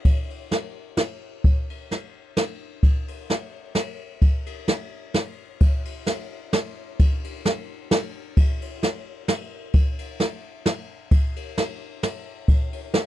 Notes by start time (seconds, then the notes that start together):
0.05 kick, ride
0.30 ride
0.51 snare, ride
0.97 snare, ride
1.44 kick, ride
1.70 ride
1.91 snare, ride
2.37 snare, ride
2.83 kick, ride
3.08 ride
3.30 snare, ride
3.75 snare, ride
4.22 kick, ride
4.46 ride
4.68 snare, ride
5.14 snare, ride
5.60 kick, ride
5.85 ride
6.06 snare, ride
6.53 snare, ride
6.99 kick, ride
7.24 ride
7.45 snare, ride
7.91 snare, ride
8.37 kick, ride
8.62 ride
8.83 snare, ride
9.28 snare, ride
9.73 kick, ride
9.99 ride
10.20 snare, ride
10.66 snare, ride
11.11 kick, ride
11.36 ride
11.58 snare, ride
12.03 snare, ride
12.48 kick, ride
12.73 ride
12.94 snare, ride